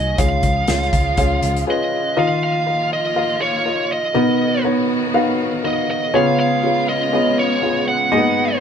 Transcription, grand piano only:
0.00 0.20 D#3 medium
0.00 0.21 D#4 medium
0.00 0.21 F#4 medium
0.00 0.21 A#4 medium
0.00 0.20 C5 medium
0.00 0.20 C#5 medium
0.00 0.21 F#5 medium
0.00 0.20 G#5 medium
0.18 0.89 C#3 medium
0.18 0.59 C#4 medium
0.18 0.59 F4 medium
0.18 0.59 G#4 medium
0.18 0.59 F5 medium
0.68 1.09 C#4 medium
0.68 1.09 F4 medium
0.68 1.09 G#4 soft
0.68 1.09 F5 medium
1.17 1.58 C#4 medium
1.17 1.58 F4 medium
1.17 1.58 G#4 medium
1.17 1.58 F5 medium
1.67 2.08 C#4 medium
1.67 2.08 F4 medium
1.67 2.08 G#4 medium
1.67 2.08 B4 medium
2.17 2.87 D#3 medium
2.17 2.57 F4 medium
2.17 2.57 A#4 medium
2.17 2.57 D#5 loud
2.66 3.07 F4 medium
2.66 3.07 A#4 medium
2.66 3.07 D#5 medium
3.16 3.57 F4 medium
3.16 3.57 A#4 medium
3.16 3.57 F5 medium
3.66 4.06 F4 medium
3.66 4.06 A#4 medium
3.66 4.06 D#5 medium
4.14 4.85 B2 medium
4.14 4.55 B3 loud
4.14 4.55 D#4 medium
4.14 4.56 F#4 medium
4.14 4.55 A#4 medium
4.14 4.56 D#5 loud
4.64 5.05 B3 medium
4.64 5.05 D#4 medium
4.64 5.05 F#4 medium
4.64 5.05 A#4 medium
4.64 5.05 C#5 medium
5.14 5.55 B3 medium
5.14 5.55 D#4 medium
5.14 5.55 F#4 medium
5.14 5.55 A#4 medium
5.14 5.55 F5 loud
5.64 6.05 B3 medium
5.64 6.05 D#4 medium
5.64 6.05 F#4 medium
5.64 6.05 A#4 medium
5.64 6.05 D#5 medium
6.14 6.84 C#3 medium
6.14 6.54 B3 loud
6.14 6.54 C#4 medium
6.14 6.54 F4 medium
6.14 6.54 G#4 medium
6.14 6.54 C#5 loud
6.63 7.04 B3 medium
6.63 7.04 C#4 medium
6.63 7.04 F4 medium
6.63 7.04 G#4 medium
6.63 7.04 C#5 medium
7.13 7.53 B3 medium
7.13 7.53 C#4 medium
7.13 7.54 F4 medium
7.13 7.54 G#4 medium
7.13 7.54 D#5 medium
7.62 8.03 B3 medium
7.62 8.03 C#4 medium
7.62 8.03 F4 medium
7.62 8.03 G#4 medium
7.62 8.03 C#5 medium
8.12 8.60 G#2 medium
8.12 8.19 A#3 medium
8.12 8.52 D#4 medium
8.12 8.53 F#4 medium
8.12 8.53 G#4 medium
8.12 8.53 D#5 loud
8.18 8.55 B3 loud

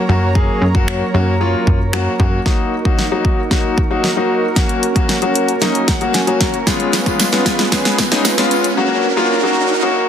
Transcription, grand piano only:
0.09 0.27 F#3 medium
0.09 0.27 A#3 medium
0.09 0.27 C#4 medium
0.09 0.27 F#4 loud
0.35 0.63 F#3 medium
0.35 0.63 A#3 medium
0.35 0.63 C#4 medium
0.35 0.63 G#4 loud
0.75 1.02 F#3 medium
0.75 1.02 A#3 medium
0.75 1.02 C#4 medium
0.75 1.02 F#4 loud
1.14 1.32 F#3 medium
1.14 1.32 A#3 medium
1.14 1.33 C#4 medium
1.14 1.33 F#4 loud
1.40 1.77 F#3 medium
1.40 1.77 A#3 medium
1.40 1.77 C#4 medium
1.40 1.77 F4 medium
1.93 2.11 F#3 medium
1.93 2.11 A#3 medium
1.93 2.11 C#4 medium
1.93 2.12 F#4 loud
2.19 2.38 F#3 medium
2.19 2.38 A#3 medium
2.19 2.38 C#4 medium
2.19 2.38 F#4 loud
2.45 2.73 F#3 medium
2.45 2.73 A#3 medium
2.45 2.73 D#4 medium
2.45 2.73 F#4 medium
2.85 3.03 F#3 medium
2.85 3.03 A#3 medium
2.85 3.04 D#4 medium
2.85 3.04 F#4 medium
3.11 3.39 F#3 medium
3.11 3.39 A#3 medium
3.11 3.39 D#4 medium
3.11 3.39 F#4 medium
3.51 3.78 F#3 medium
3.51 3.78 A#3 medium
3.51 3.78 D#4 medium
3.51 3.79 F#4 medium
3.90 4.09 F#3 medium
3.90 4.09 A#3 medium
3.90 4.09 D#4 medium
3.90 4.09 F#4 medium
4.17 4.44 F#3 medium
4.17 4.44 A#3 medium
4.17 4.44 D#4 medium
4.17 4.44 F#4 medium
4.56 4.84 F#3 medium
4.56 4.84 A#3 medium
4.56 4.84 C#4 medium
4.56 4.84 F#4 medium
4.96 5.14 F#3 medium
4.96 5.14 A#3 medium
4.96 5.14 C#4 medium
4.96 5.14 F#4 medium
5.22 5.49 F#3 medium
5.22 5.49 A#3 medium
5.22 5.50 C#4 medium
5.22 5.50 F#4 medium
5.61 5.89 F#3 medium
5.61 5.89 A#3 medium
5.61 5.89 C#4 medium
5.61 5.89 D#4 medium
5.88 6.12 F#5 medium
6.01 6.19 F#3 medium
6.01 6.19 A#3 medium
6.01 6.19 C#4 medium
6.01 6.19 F#4 medium
6.14 6.39 G#5 medium
6.27 6.55 F#3 medium
6.27 6.55 A#3 medium
6.27 6.55 C#4 medium
6.27 6.55 F#4 medium
6.41 6.65 A#5 medium
6.67 6.94 G#3 medium
6.67 6.94 B3 medium
6.67 6.94 C#4 medium
6.67 6.94 F4 loud
7.06 7.24 G#3 medium
7.06 7.25 B3 medium
7.06 7.25 C#4 medium
7.06 7.25 F4 medium
7.32 7.60 G#3 medium
7.32 7.60 B3 medium
7.32 7.60 C#4 medium
7.32 7.60 F4 medium
7.72 7.99 G#3 medium
7.72 7.99 B3 medium
7.72 8.00 C#4 medium
7.72 8.00 G#4 medium
8.11 8.30 G#3 medium
8.11 8.30 B3 medium
8.11 8.30 C#4 medium
8.11 8.30 D#4 loud
8.38 8.65 G#3 medium
8.38 8.65 B3 medium
8.38 8.65 C#4 medium
8.38 8.65 F4 loud
8.77 9.05 F#3 medium
8.77 9.05 A#3 medium
8.77 9.05 C#4 medium
8.77 9.05 F#4 loud
9.17 9.35 F#3 medium
9.17 9.35 A#3 medium
9.17 9.35 C#4 medium
9.17 9.35 F4 loud
9.43 9.70 F#3 medium
9.43 9.70 A#3 medium
9.43 9.71 C#4 medium
9.43 9.71 F#4 medium
9.82 10.09 F#3 medium
9.82 10.09 A#3 medium
9.82 10.09 C#4 medium
9.82 10.09 F#4 loud

